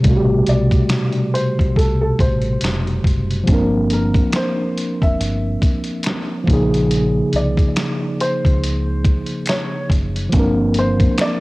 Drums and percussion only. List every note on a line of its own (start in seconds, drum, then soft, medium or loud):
0.04 kick loud
0.04 closed hi-hat medium
0.46 closed hi-hat medium
0.71 kick medium
0.71 closed hi-hat soft
0.89 finger snap medium
0.89 snare loud
0.89 closed hi-hat medium
1.12 closed hi-hat soft
1.35 closed hi-hat medium
1.59 kick medium
1.59 closed hi-hat soft
1.76 kick medium
1.76 closed hi-hat medium
2.19 kick medium
2.19 closed hi-hat medium
2.42 closed hi-hat soft
2.61 finger snap medium
2.61 snare loud
2.61 closed hi-hat medium
2.87 closed hi-hat soft
3.04 kick medium
3.04 closed hi-hat medium
3.31 closed hi-hat soft
3.47 kick loud
3.47 closed hi-hat medium
3.90 closed hi-hat medium
4.14 kick medium
4.14 closed hi-hat soft
4.32 finger snap medium
4.32 snare loud
4.32 closed hi-hat medium
4.78 closed hi-hat medium
5.02 kick medium
5.02 closed hi-hat soft
5.21 closed hi-hat medium
5.62 kick loud
5.62 closed hi-hat medium
5.84 closed hi-hat soft
6.03 finger snap medium
6.03 closed hi-hat medium
6.07 finger snap medium
6.07 snare loud
6.48 kick loud
6.48 closed hi-hat medium
6.74 closed hi-hat soft
6.91 closed hi-hat medium
7.33 closed hi-hat medium
7.57 kick medium
7.57 closed hi-hat soft
7.76 finger snap medium
7.76 snare loud
7.76 closed hi-hat medium
8.20 closed hi-hat medium
8.45 kick medium
8.45 closed hi-hat soft
8.64 closed hi-hat medium
9.05 kick medium
9.05 closed hi-hat medium
9.26 closed hi-hat soft
9.46 finger snap medium
9.46 closed hi-hat medium
9.49 finger snap medium
9.49 snare loud
9.90 kick medium
9.90 closed hi-hat medium
10.16 closed hi-hat soft
10.32 kick loud
10.32 closed hi-hat medium
10.74 closed hi-hat medium
11.00 kick medium
11.00 closed hi-hat soft
11.18 finger snap loud
11.18 finger snap medium
11.18 snare loud
11.18 closed hi-hat medium